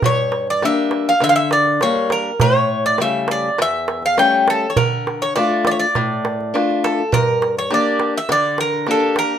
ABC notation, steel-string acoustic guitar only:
X:1
M:4/4
L:1/8
Q:1/4=102
K:Gdor
V:1 name="Steel-string acoustic guitar"
G,,2 [G,B,D]2 D,2 [G,B,D]2 | A,,2 [^C,G,A,]2 E,,2 [G,A,^C]2 | D,2 [A,DF]2 A,,2 [A,DF]2 | G,,2 [B,DG]2 D,2 [B,DG]2 |]